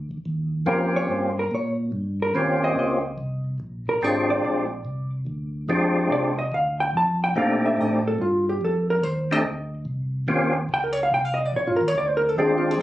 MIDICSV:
0, 0, Header, 1, 4, 480
1, 0, Start_track
1, 0, Tempo, 418410
1, 275, Time_signature, 4, 2, 24, 8
1, 14709, End_track
2, 0, Start_track
2, 0, Title_t, "Hollow-body jazz guitar"
2, 0, Program_c, 0, 26
2, 788, Note_on_c, 0, 70, 69
2, 1088, Note_off_c, 0, 70, 0
2, 1105, Note_on_c, 0, 73, 93
2, 1280, Note_off_c, 0, 73, 0
2, 1280, Note_on_c, 0, 72, 75
2, 1574, Note_off_c, 0, 72, 0
2, 1597, Note_on_c, 0, 70, 74
2, 1731, Note_off_c, 0, 70, 0
2, 1773, Note_on_c, 0, 73, 81
2, 1951, Note_off_c, 0, 73, 0
2, 2551, Note_on_c, 0, 70, 75
2, 2718, Note_off_c, 0, 70, 0
2, 2718, Note_on_c, 0, 73, 84
2, 3014, Note_off_c, 0, 73, 0
2, 3030, Note_on_c, 0, 75, 92
2, 3168, Note_off_c, 0, 75, 0
2, 3199, Note_on_c, 0, 75, 78
2, 3938, Note_off_c, 0, 75, 0
2, 4462, Note_on_c, 0, 70, 69
2, 4637, Note_off_c, 0, 70, 0
2, 4637, Note_on_c, 0, 73, 80
2, 4931, Note_off_c, 0, 73, 0
2, 4936, Note_on_c, 0, 74, 90
2, 5081, Note_off_c, 0, 74, 0
2, 5099, Note_on_c, 0, 74, 82
2, 5848, Note_off_c, 0, 74, 0
2, 7023, Note_on_c, 0, 74, 80
2, 7321, Note_off_c, 0, 74, 0
2, 7326, Note_on_c, 0, 75, 89
2, 7476, Note_off_c, 0, 75, 0
2, 7505, Note_on_c, 0, 77, 78
2, 7800, Note_off_c, 0, 77, 0
2, 7805, Note_on_c, 0, 79, 96
2, 7955, Note_off_c, 0, 79, 0
2, 7996, Note_on_c, 0, 81, 97
2, 8292, Note_off_c, 0, 81, 0
2, 8303, Note_on_c, 0, 79, 96
2, 8444, Note_off_c, 0, 79, 0
2, 8462, Note_on_c, 0, 77, 83
2, 8765, Note_off_c, 0, 77, 0
2, 8784, Note_on_c, 0, 76, 91
2, 8954, Note_off_c, 0, 76, 0
2, 8954, Note_on_c, 0, 75, 92
2, 9107, Note_off_c, 0, 75, 0
2, 9107, Note_on_c, 0, 72, 89
2, 9248, Note_off_c, 0, 72, 0
2, 9264, Note_on_c, 0, 69, 70
2, 9406, Note_off_c, 0, 69, 0
2, 9423, Note_on_c, 0, 65, 74
2, 9725, Note_off_c, 0, 65, 0
2, 9744, Note_on_c, 0, 67, 90
2, 9884, Note_off_c, 0, 67, 0
2, 9918, Note_on_c, 0, 69, 76
2, 10208, Note_off_c, 0, 69, 0
2, 10213, Note_on_c, 0, 70, 84
2, 10363, Note_off_c, 0, 70, 0
2, 10363, Note_on_c, 0, 72, 78
2, 10696, Note_off_c, 0, 72, 0
2, 10696, Note_on_c, 0, 75, 96
2, 11168, Note_off_c, 0, 75, 0
2, 12317, Note_on_c, 0, 79, 90
2, 12432, Note_on_c, 0, 70, 64
2, 12454, Note_off_c, 0, 79, 0
2, 12535, Note_off_c, 0, 70, 0
2, 12535, Note_on_c, 0, 73, 97
2, 12642, Note_off_c, 0, 73, 0
2, 12655, Note_on_c, 0, 77, 86
2, 12741, Note_off_c, 0, 77, 0
2, 12779, Note_on_c, 0, 79, 102
2, 12903, Note_off_c, 0, 79, 0
2, 12903, Note_on_c, 0, 77, 93
2, 13007, Note_on_c, 0, 75, 94
2, 13067, Note_off_c, 0, 77, 0
2, 13140, Note_off_c, 0, 75, 0
2, 13140, Note_on_c, 0, 74, 94
2, 13223, Note_off_c, 0, 74, 0
2, 13266, Note_on_c, 0, 73, 86
2, 13392, Note_on_c, 0, 65, 63
2, 13408, Note_off_c, 0, 73, 0
2, 13495, Note_on_c, 0, 70, 89
2, 13551, Note_off_c, 0, 65, 0
2, 13627, Note_off_c, 0, 70, 0
2, 13627, Note_on_c, 0, 73, 81
2, 13707, Note_off_c, 0, 73, 0
2, 13740, Note_on_c, 0, 74, 98
2, 13863, Note_off_c, 0, 74, 0
2, 13863, Note_on_c, 0, 72, 91
2, 13960, Note_on_c, 0, 70, 91
2, 14026, Note_off_c, 0, 72, 0
2, 14095, Note_off_c, 0, 70, 0
2, 14095, Note_on_c, 0, 69, 78
2, 14180, Note_off_c, 0, 69, 0
2, 14222, Note_on_c, 0, 68, 78
2, 14329, Note_on_c, 0, 60, 60
2, 14365, Note_off_c, 0, 68, 0
2, 14428, Note_on_c, 0, 65, 90
2, 14498, Note_off_c, 0, 60, 0
2, 14580, Note_off_c, 0, 65, 0
2, 14580, Note_on_c, 0, 68, 91
2, 14691, Note_off_c, 0, 68, 0
2, 14709, End_track
3, 0, Start_track
3, 0, Title_t, "Tonewheel organ"
3, 0, Program_c, 1, 16
3, 757, Note_on_c, 1, 58, 61
3, 761, Note_on_c, 1, 61, 55
3, 762, Note_on_c, 1, 60, 55
3, 766, Note_on_c, 1, 65, 55
3, 770, Note_on_c, 1, 67, 66
3, 1497, Note_off_c, 1, 58, 0
3, 1500, Note_off_c, 1, 60, 0
3, 1500, Note_off_c, 1, 61, 0
3, 1502, Note_off_c, 1, 65, 0
3, 1504, Note_off_c, 1, 67, 0
3, 2694, Note_on_c, 1, 60, 54
3, 2695, Note_on_c, 1, 58, 62
3, 2695, Note_on_c, 1, 61, 56
3, 2703, Note_on_c, 1, 65, 54
3, 2705, Note_on_c, 1, 67, 68
3, 3426, Note_off_c, 1, 60, 0
3, 3427, Note_off_c, 1, 58, 0
3, 3427, Note_off_c, 1, 61, 0
3, 3431, Note_off_c, 1, 65, 0
3, 3432, Note_off_c, 1, 67, 0
3, 4613, Note_on_c, 1, 56, 61
3, 4618, Note_on_c, 1, 62, 57
3, 4620, Note_on_c, 1, 60, 56
3, 4621, Note_on_c, 1, 65, 57
3, 4628, Note_on_c, 1, 67, 65
3, 5346, Note_off_c, 1, 56, 0
3, 5348, Note_off_c, 1, 62, 0
3, 5349, Note_off_c, 1, 60, 0
3, 5350, Note_off_c, 1, 65, 0
3, 5353, Note_off_c, 1, 67, 0
3, 6525, Note_on_c, 1, 56, 61
3, 6533, Note_on_c, 1, 62, 56
3, 6534, Note_on_c, 1, 60, 57
3, 6536, Note_on_c, 1, 65, 56
3, 6541, Note_on_c, 1, 67, 67
3, 7261, Note_off_c, 1, 56, 0
3, 7265, Note_off_c, 1, 62, 0
3, 7266, Note_off_c, 1, 60, 0
3, 7267, Note_off_c, 1, 65, 0
3, 7269, Note_off_c, 1, 67, 0
3, 8439, Note_on_c, 1, 60, 59
3, 8442, Note_on_c, 1, 57, 62
3, 8446, Note_on_c, 1, 63, 55
3, 8449, Note_on_c, 1, 62, 58
3, 8451, Note_on_c, 1, 67, 69
3, 9177, Note_off_c, 1, 60, 0
3, 9179, Note_off_c, 1, 57, 0
3, 9181, Note_off_c, 1, 63, 0
3, 9183, Note_off_c, 1, 62, 0
3, 9184, Note_off_c, 1, 67, 0
3, 10681, Note_on_c, 1, 60, 66
3, 10683, Note_on_c, 1, 57, 73
3, 10684, Note_on_c, 1, 62, 66
3, 10684, Note_on_c, 1, 63, 64
3, 10684, Note_on_c, 1, 67, 80
3, 10821, Note_off_c, 1, 60, 0
3, 10822, Note_off_c, 1, 57, 0
3, 10822, Note_off_c, 1, 62, 0
3, 10823, Note_off_c, 1, 63, 0
3, 10823, Note_off_c, 1, 67, 0
3, 11792, Note_on_c, 1, 58, 63
3, 11793, Note_on_c, 1, 60, 58
3, 11797, Note_on_c, 1, 61, 59
3, 11797, Note_on_c, 1, 65, 58
3, 11797, Note_on_c, 1, 67, 72
3, 12085, Note_off_c, 1, 58, 0
3, 12086, Note_off_c, 1, 60, 0
3, 12088, Note_off_c, 1, 61, 0
3, 12088, Note_off_c, 1, 65, 0
3, 12088, Note_off_c, 1, 67, 0
3, 14201, Note_on_c, 1, 56, 67
3, 14207, Note_on_c, 1, 60, 59
3, 14210, Note_on_c, 1, 65, 57
3, 14212, Note_on_c, 1, 62, 60
3, 14220, Note_on_c, 1, 67, 70
3, 14676, Note_off_c, 1, 56, 0
3, 14679, Note_off_c, 1, 60, 0
3, 14681, Note_off_c, 1, 62, 0
3, 14681, Note_off_c, 1, 65, 0
3, 14686, Note_off_c, 1, 67, 0
3, 14709, End_track
4, 0, Start_track
4, 0, Title_t, "Tonewheel organ"
4, 0, Program_c, 2, 16
4, 126, Note_on_c, 2, 38, 38
4, 202, Note_off_c, 2, 38, 0
4, 292, Note_on_c, 2, 39, 79
4, 750, Note_off_c, 2, 39, 0
4, 761, Note_on_c, 2, 41, 86
4, 1225, Note_off_c, 2, 41, 0
4, 1234, Note_on_c, 2, 43, 78
4, 1702, Note_off_c, 2, 43, 0
4, 1733, Note_on_c, 2, 46, 79
4, 2192, Note_off_c, 2, 46, 0
4, 2204, Note_on_c, 2, 43, 73
4, 2668, Note_off_c, 2, 43, 0
4, 2686, Note_on_c, 2, 39, 87
4, 3148, Note_off_c, 2, 39, 0
4, 3167, Note_on_c, 2, 37, 80
4, 3629, Note_off_c, 2, 37, 0
4, 3645, Note_on_c, 2, 36, 83
4, 4108, Note_off_c, 2, 36, 0
4, 4127, Note_on_c, 2, 34, 78
4, 4425, Note_off_c, 2, 34, 0
4, 4452, Note_on_c, 2, 34, 39
4, 4528, Note_off_c, 2, 34, 0
4, 4604, Note_on_c, 2, 32, 86
4, 5068, Note_off_c, 2, 32, 0
4, 5080, Note_on_c, 2, 34, 82
4, 5545, Note_off_c, 2, 34, 0
4, 5561, Note_on_c, 2, 36, 83
4, 6026, Note_off_c, 2, 36, 0
4, 6040, Note_on_c, 2, 38, 82
4, 6505, Note_off_c, 2, 38, 0
4, 6517, Note_on_c, 2, 41, 87
4, 6984, Note_off_c, 2, 41, 0
4, 6993, Note_on_c, 2, 36, 79
4, 7461, Note_off_c, 2, 36, 0
4, 7477, Note_on_c, 2, 38, 86
4, 7943, Note_off_c, 2, 38, 0
4, 7957, Note_on_c, 2, 41, 78
4, 8423, Note_off_c, 2, 41, 0
4, 8436, Note_on_c, 2, 46, 89
4, 8903, Note_off_c, 2, 46, 0
4, 8915, Note_on_c, 2, 45, 80
4, 9382, Note_off_c, 2, 45, 0
4, 9389, Note_on_c, 2, 43, 85
4, 9859, Note_off_c, 2, 43, 0
4, 9877, Note_on_c, 2, 41, 79
4, 10342, Note_off_c, 2, 41, 0
4, 10353, Note_on_c, 2, 39, 92
4, 10820, Note_off_c, 2, 39, 0
4, 10829, Note_on_c, 2, 38, 83
4, 11298, Note_off_c, 2, 38, 0
4, 11302, Note_on_c, 2, 36, 86
4, 11774, Note_off_c, 2, 36, 0
4, 11782, Note_on_c, 2, 39, 83
4, 12254, Note_off_c, 2, 39, 0
4, 12263, Note_on_c, 2, 37, 91
4, 12734, Note_off_c, 2, 37, 0
4, 12749, Note_on_c, 2, 36, 83
4, 13217, Note_off_c, 2, 36, 0
4, 13235, Note_on_c, 2, 34, 86
4, 13389, Note_off_c, 2, 34, 0
4, 13391, Note_on_c, 2, 31, 54
4, 13547, Note_on_c, 2, 39, 68
4, 13552, Note_off_c, 2, 31, 0
4, 13699, Note_off_c, 2, 39, 0
4, 13712, Note_on_c, 2, 38, 82
4, 14178, Note_off_c, 2, 38, 0
4, 14188, Note_on_c, 2, 39, 87
4, 14655, Note_off_c, 2, 39, 0
4, 14659, Note_on_c, 2, 41, 85
4, 14709, Note_off_c, 2, 41, 0
4, 14709, End_track
0, 0, End_of_file